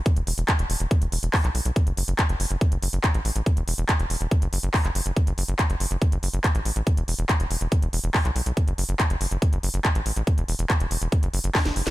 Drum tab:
HH |xxoxxxoxxxoxoxox|xxoxxxoxxxoxxxox|xxoxxxoxxxoxoxox|xxoxxxoxxxoxxxox|
CP |----x-------xx--|----x-------x---|----x-------xx--|----x-------x---|
SD |----------------|----------------|----------------|----------------|
BD |o---o---o---o---|o---o---o---o---|o---o---o---o---|o---o---o---o---|

HH |xxoxxxoxxxoxoxox|xxoxxxoxxxoxxxox|xxoxxxoxxxoxoxox|
CP |----x-------xx--|----x-------x---|----x-------x---|
SD |----------------|----------------|------------oo-o|
BD |o---o---o---o---|o---o---o---o---|o---o---o---o---|